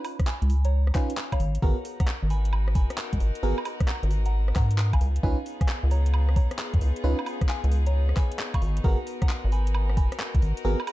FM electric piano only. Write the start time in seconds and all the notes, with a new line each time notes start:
0.95 C#4 D#4 F4 B4
1.62 B3 F#4 G#4 A#4
3.43 B3 F#4 G#4 A#4
5.23 C#4 D#4 F4 B4
7.04 C#4 D#4 F4 B4
8.84 B3 F#4 G#4 A#4
10.65 B3 F#4 G#4 A#4